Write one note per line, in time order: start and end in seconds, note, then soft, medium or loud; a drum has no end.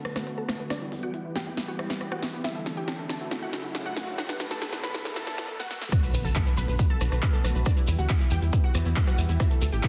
0.00 riser medium
0.05 0.14 B1 medium
0.05 0.20 D3 medium
0.05 0.20 A3 medium
0.05 0.20 B3 medium
0.05 0.20 F#4 medium
0.05 0.14 B4 medium
0.05 cross-stick medium
0.05 open hi-hat loud
0.16 0.25 B1 medium
0.16 0.25 B4 medium
0.16 cross-stick medium
0.16 snare soft
0.16 closed hi-hat medium
0.27 0.42 D3 medium
0.27 0.42 A3 medium
0.27 0.42 B3 medium
0.27 0.42 F#4 medium
0.27 0.35 B4 medium
0.27 closed hi-hat medium
0.38 0.46 A4 medium
0.38 0.46 A5 medium
0.49 0.57 B1 medium
0.49 0.56 D3 medium
0.49 0.56 A3 medium
0.49 0.56 B3 medium
0.49 0.56 F#4 medium
0.49 0.57 B4 medium
0.49 cross-stick medium
0.49 snare medium
0.49 open hi-hat loud
0.59 0.68 B1 medium
0.59 0.67 D3 medium
0.59 0.67 A3 medium
0.59 0.67 B3 medium
0.59 0.67 F#4 medium
0.59 0.68 B4 medium
0.59 closed hi-hat medium
0.70 0.86 E3 medium
0.70 0.86 G3 medium
0.70 0.86 B3 medium
0.70 0.79 D4 medium
0.70 0.86 G4 medium
0.70 0.79 D5 medium
0.70 cross-stick medium
0.70 snare medium
0.70 closed hi-hat medium
0.82 0.90 E4 medium
0.92 1.01 E2 medium
0.92 1.07 E3 medium
0.92 1.07 G3 medium
0.92 1.07 B3 medium
0.92 1.01 E4 medium
0.92 1.07 G4 medium
0.92 open hi-hat loud
1.03 1.12 D2 medium
1.03 1.12 F#4 medium
1.03 1.12 F#5 medium
1.03 closed hi-hat medium
1.14 1.22 E4 medium
1.14 closed hi-hat medium
1.25 1.32 E3 medium
1.25 1.32 G3 medium
1.25 1.32 B3 medium
1.25 1.33 E4 medium
1.25 1.32 G4 medium
1.36 1.44 E2 medium
1.36 1.43 E3 medium
1.36 1.43 G3 medium
1.36 1.43 B3 medium
1.36 1.44 G4 medium
1.36 1.43 G4 medium
1.36 1.44 G5 medium
1.36 snare medium
1.36 open hi-hat loud
1.46 1.55 E2 medium
1.46 1.54 E3 medium
1.46 1.54 G3 medium
1.46 1.54 B3 medium
1.46 1.55 E4 medium
1.46 1.54 G4 medium
1.46 closed hi-hat medium
1.57 1.72 E3 medium
1.57 1.72 G3 medium
1.57 1.72 B3 medium
1.57 1.66 E4 medium
1.57 1.72 G4 medium
1.57 snare medium
1.57 closed hi-hat medium
1.68 1.77 F#4 medium
1.68 1.77 F#5 medium
1.79 1.88 E2 medium
1.79 1.94 E3 medium
1.79 1.94 G3 medium
1.79 1.94 B3 medium
1.79 1.88 E4 medium
1.79 1.94 G4 medium
1.79 cross-stick medium
1.79 open hi-hat loud
1.90 1.99 E2 medium
1.90 1.99 E4 medium
1.90 snare medium
1.90 closed hi-hat medium
2.01 2.16 E3 medium
2.01 2.16 G3 medium
2.01 2.16 B3 medium
2.01 2.09 E4 medium
2.01 2.16 G4 medium
2.01 cross-stick medium
2.01 closed hi-hat medium
2.12 2.20 F#4 medium
2.12 2.20 F#5 medium
2.12 cross-stick medium
2.22 2.31 E2 medium
2.22 2.30 E3 medium
2.22 2.30 G3 medium
2.22 2.30 B3 medium
2.22 2.31 E4 medium
2.22 2.30 G4 medium
2.22 snare medium
2.22 open hi-hat loud
2.33 2.42 E2 medium
2.33 2.41 E3 medium
2.33 2.41 G3 medium
2.33 2.41 B3 medium
2.33 2.42 E4 medium
2.33 2.41 G4 medium
2.33 closed hi-hat medium
2.44 2.60 D3 medium
2.44 2.60 E3 medium
2.44 2.59 A3 medium
2.44 2.60 E4 medium
2.44 2.53 E4 medium
2.44 2.53 E5 loud
2.44 snare medium
2.44 closed hi-hat medium
2.55 2.64 A4 medium
2.66 2.75 D2 loud
2.66 2.81 D3 medium
2.66 2.81 E3 medium
2.66 2.81 A3 medium
2.66 2.81 E4 medium
2.66 2.75 A4 medium
2.66 snare medium
2.66 open hi-hat loud
2.77 2.86 A1 medium
2.77 2.86 G4 medium
2.77 2.86 G5 medium
2.77 closed hi-hat medium
2.88 2.96 A4 medium
2.88 snare medium
2.88 closed hi-hat medium
2.98 3.06 D3 medium
2.98 3.06 E3 medium
2.98 3.06 A3 medium
2.98 3.06 E4 medium
2.98 3.07 A4 medium
3.09 3.18 D2 medium
3.09 3.17 D3 medium
3.09 3.17 E3 medium
3.09 3.17 A3 medium
3.09 3.17 E4 medium
3.09 3.18 A4 medium
3.09 3.18 A5 medium
3.09 snare medium
3.09 open hi-hat loud
3.20 3.29 D2 medium
3.20 3.28 D3 medium
3.20 3.28 E3 medium
3.20 3.28 A3 medium
3.20 3.28 E4 medium
3.20 3.29 F#4 medium
3.20 closed hi-hat medium
3.31 3.46 C#3 medium
3.31 3.46 F#3 medium
3.31 3.46 A3 medium
3.31 3.46 E4 medium
3.31 3.40 F#4 medium
3.31 snare medium
3.31 closed hi-hat medium
3.42 3.51 F#4 medium
3.42 3.51 F#5 loud
3.53 3.62 F#1 loud
3.53 3.68 C#3 medium
3.53 3.68 F#3 medium
3.53 3.68 A3 medium
3.53 3.68 E4 medium
3.53 3.62 F#4 medium
3.53 snare medium
3.53 open hi-hat loud
3.64 3.73 F#1 medium
3.64 3.73 F#4 medium
3.64 closed hi-hat medium
3.75 3.90 C#3 medium
3.75 3.90 F#3 medium
3.75 3.90 A3 medium
3.75 3.90 E4 medium
3.75 3.83 F#4 medium
3.75 snare medium
3.75 closed hi-hat medium
3.86 3.94 F#4 medium
3.86 3.94 F#5 loud
3.96 4.05 F#1 medium
3.96 4.04 C#3 medium
3.96 4.04 F#3 medium
3.96 4.04 A3 medium
3.96 4.04 E4 medium
3.96 4.05 F#4 medium
3.96 snare medium
3.96 open hi-hat loud
4.07 4.15 C#3 medium
4.07 4.15 F#3 medium
4.07 4.15 A3 medium
4.07 4.15 E4 medium
4.07 4.16 F#4 medium
4.07 closed hi-hat medium
4.18 4.34 D3 medium
4.18 4.34 A3 medium
4.18 4.34 B3 medium
4.18 4.27 F#4 medium
4.18 4.34 F#4 medium
4.18 4.27 F#5 loud
4.18 snare medium
4.18 closed hi-hat medium
4.29 4.38 B4 medium
4.29 snare medium
4.40 4.49 B1 loud
4.40 4.55 D3 medium
4.40 4.55 A3 medium
4.40 4.55 B3 medium
4.40 4.56 F#4 medium
4.40 4.48 B4 medium
4.40 snare loud
4.40 open hi-hat loud
4.51 4.60 A1 medium
4.51 4.59 A4 medium
4.51 4.59 A5 loud
4.51 snare medium
4.51 closed hi-hat medium
4.62 4.70 B4 medium
4.62 snare loud
4.62 closed hi-hat medium
4.72 4.80 D3 medium
4.72 4.80 A3 medium
4.72 4.80 B3 medium
4.72 4.80 F#4 medium
4.72 4.81 B4 medium
4.72 snare medium
4.83 4.92 B1 medium
4.83 4.91 D3 medium
4.83 4.91 A3 medium
4.83 4.91 B3 medium
4.83 4.91 F#4 medium
4.83 4.92 B4 medium
4.83 4.92 B5 medium
4.83 snare loud
4.83 open hi-hat loud
4.94 5.03 B1 medium
4.94 5.02 D3 medium
4.94 5.02 A3 medium
4.94 5.02 B3 medium
4.94 5.02 F#4 medium
4.94 5.03 A4 medium
4.94 snare medium
5.05 5.21 C#3 medium
5.05 5.21 A3 medium
5.05 5.21 B3 medium
5.05 5.20 E4 medium
5.05 5.14 A4 medium
5.05 snare loud
5.05 closed hi-hat medium
5.16 5.25 A4 medium
5.16 5.25 A5 medium
5.16 snare medium
5.27 5.36 A1 loud
5.27 5.42 C#3 medium
5.27 5.42 A3 medium
5.27 5.42 B3 medium
5.27 5.42 E4 medium
5.27 5.35 A4 medium
5.27 snare loud
5.27 open hi-hat loud
5.38 5.46 A1 medium
5.38 5.46 A4 medium
5.38 snare medium
5.38 closed hi-hat medium
5.48 5.57 A4 medium
5.59 5.68 F#4 medium
5.59 5.68 F#5 loud
5.59 snare medium
5.70 5.79 A4 medium
5.70 snare medium
5.81 5.90 A4 medium
5.81 snare medium
5.92 6.07 D3 medium
5.92 6.08 A3 medium
5.92 6.08 B3 medium
5.92 6.01 F#4 medium
5.92 6.07 F#4 medium
5.92 6.01 F#5 medium
5.92 kick loud
5.92 cross-stick medium
5.92 closed hi-hat medium
5.92 crash loud
5.92 impact medium
5.92 shekere soft
6.03 6.11 B4 medium
6.03 closed hi-hat medium
6.03 shekere soft
6.14 6.23 B1 loud
6.14 6.29 D3 medium
6.14 6.29 A3 medium
6.14 6.29 B3 medium
6.14 6.29 F#4 medium
6.14 6.22 B4 medium
6.14 open hi-hat loud
6.14 shekere medium
6.25 6.33 A1 medium
6.25 6.33 A4 medium
6.25 6.33 A5 loud
6.25 closed hi-hat medium
6.25 shekere soft
6.36 6.44 B4 medium
6.36 kick loud
6.36 clap loud
6.36 closed hi-hat medium
6.36 shekere medium
6.46 6.54 D3 medium
6.46 6.54 A3 medium
6.46 6.54 B3 medium
6.46 6.54 F#4 medium
6.46 6.55 B4 medium
6.46 closed hi-hat medium
6.46 shekere soft
6.57 6.66 B1 medium
6.57 6.65 D3 loud
6.57 6.65 A3 medium
6.57 6.65 B3 medium
6.57 6.65 F#4 medium
6.57 6.66 B4 medium
6.57 6.66 B5 medium
6.57 open hi-hat loud
6.57 shekere medium
6.68 6.77 B1 medium
6.68 6.76 D3 medium
6.68 6.76 A3 medium
6.68 6.76 B3 medium
6.68 6.76 F#4 medium
6.68 6.77 B4 medium
6.68 closed hi-hat medium
6.68 shekere soft
6.79 6.94 D3 medium
6.79 6.94 A3 medium
6.79 6.94 B3 medium
6.79 6.94 F#4 medium
6.79 6.88 B4 medium
6.79 kick loud
6.79 closed hi-hat medium
6.79 shekere medium
6.90 6.98 A4 medium
6.90 6.99 A5 loud
6.90 closed hi-hat medium
7.01 7.10 B1 medium
7.01 7.16 D3 medium
7.01 7.16 A3 medium
7.01 7.16 B3 medium
7.01 7.16 F#4 medium
7.01 7.09 B4 medium
7.01 cross-stick medium
7.01 open hi-hat loud
7.01 shekere medium
7.12 7.20 B1 medium
7.12 7.20 B4 medium
7.12 cross-stick medium
7.12 closed hi-hat medium
7.12 shekere soft
7.22 7.38 D3 medium
7.22 7.38 A3 medium
7.22 7.38 B3 medium
7.22 7.38 F#4 medium
7.22 kick loud
7.22 clap loud
7.22 closed hi-hat medium
7.22 shekere medium
7.33 7.42 A4 medium
7.33 7.42 A5 medium
7.33 closed hi-hat medium
7.33 shekere soft
7.44 7.53 B1 medium
7.44 7.52 D3 medium
7.44 7.52 A3 medium
7.44 7.52 B3 medium
7.44 7.52 F#4 medium
7.44 7.53 B4 medium
7.44 cross-stick medium
7.44 open hi-hat loud
7.44 shekere medium
7.55 7.64 B1 medium
7.55 7.63 D3 medium
7.55 7.63 A3 medium
7.55 7.63 B3 medium
7.55 7.63 F#4 medium
7.55 7.64 B4 medium
7.55 closed hi-hat medium
7.55 shekere soft
7.65 7.82 E3 medium
7.65 7.81 G3 medium
7.65 7.81 B3 medium
7.65 7.75 D4 medium
7.65 7.81 G4 medium
7.65 7.75 D5 loud
7.65 kick loud
7.65 cross-stick medium
7.65 closed hi-hat medium
7.65 shekere medium
7.77 7.85 E4 medium
7.77 closed hi-hat medium
7.77 shekere soft
7.87 7.96 E2 medium
7.87 8.03 E3 medium
7.87 8.03 G3 loud
7.87 8.03 B3 medium
7.87 7.96 E4 medium
7.87 8.03 G4 medium
7.87 open hi-hat loud
7.87 shekere loud
7.98 8.07 D2 medium
7.98 8.07 F#4 medium
7.98 8.07 F#5 medium
7.98 closed hi-hat medium
7.98 shekere soft
8.09 8.18 E4 medium
8.09 kick loud
8.09 clap loud
8.09 closed hi-hat medium
8.09 shekere medium
8.20 8.28 E3 medium
8.20 8.28 G3 medium
8.20 8.28 B3 medium
8.20 8.29 E4 medium
8.20 8.28 G4 medium
8.20 closed hi-hat medium
8.20 shekere soft
8.31 8.40 E2 medium
8.31 8.39 E3 medium
8.31 8.39 G3 medium
8.31 8.39 B3 medium
8.31 8.39 G4 medium
8.31 8.40 G4 medium
8.31 8.40 G5 medium
8.31 open hi-hat loud
8.31 shekere medium
8.42 8.51 E2 medium
8.42 8.50 E3 medium
8.42 8.50 G3 medium
8.42 8.50 B3 medium
8.42 8.51 E4 medium
8.42 8.50 G4 medium
8.42 closed hi-hat medium
8.42 shekere soft
8.53 8.68 E3 medium
8.53 8.68 G3 medium
8.53 8.68 B3 medium
8.53 8.68 G4 medium
8.53 kick loud
8.53 closed hi-hat medium
8.53 shekere medium
8.64 8.72 F#4 medium
8.64 8.72 F#5 medium
8.64 closed hi-hat medium
8.74 8.83 E2 loud
8.74 8.90 E3 medium
8.74 8.90 G3 medium
8.74 8.90 B3 loud
8.74 8.83 E4 medium
8.74 8.90 G4 medium
8.74 cross-stick medium
8.74 open hi-hat loud
8.74 shekere medium
8.85 8.94 E2 medium
8.85 8.94 E4 medium
8.85 closed hi-hat soft
8.85 shekere soft
8.96 9.12 E3 medium
8.96 9.12 G3 medium
8.96 9.12 B3 medium
8.96 9.05 E4 medium
8.96 9.12 G4 medium
8.96 kick loud
8.96 cross-stick medium
8.96 clap loud
8.96 closed hi-hat medium
8.96 shekere medium
9.07 9.16 F#4 medium
9.07 9.16 F#5 loud
9.07 cross-stick medium
9.07 closed hi-hat medium
9.07 shekere soft
9.18 9.27 E2 medium
9.18 9.26 E3 medium
9.18 9.26 G3 medium
9.18 9.26 B3 medium
9.18 9.27 E4 medium
9.18 9.26 G4 medium
9.18 open hi-hat loud
9.18 shekere medium
9.29 9.38 E2 medium
9.29 9.37 E3 medium
9.29 9.37 G3 medium
9.29 9.37 B3 medium
9.29 9.38 E4 medium
9.29 9.37 G4 medium
9.29 closed hi-hat medium
9.29 shekere soft
9.40 9.55 D3 medium
9.40 9.55 E3 medium
9.40 9.55 A3 medium
9.40 9.55 E4 medium
9.40 9.48 E4 medium
9.40 9.48 E5 loud
9.40 kick loud
9.40 cross-stick medium
9.40 closed hi-hat medium
9.40 shekere medium
9.51 9.59 A4 medium
9.51 closed hi-hat medium
9.51 shekere soft
9.61 9.70 D2 medium
9.61 9.77 D3 medium
9.61 9.77 E3 medium
9.61 9.77 A3 medium
9.61 9.77 E4 medium
9.61 9.70 A4 medium
9.61 open hi-hat loud
9.61 shekere loud
9.72 9.81 A1 medium
9.72 9.81 G4 medium
9.72 9.81 G5 loud
9.72 closed hi-hat medium
9.72 shekere soft
9.83 9.88 A4 medium
9.83 kick loud
9.83 clap loud
9.83 closed hi-hat medium
9.83 shekere medium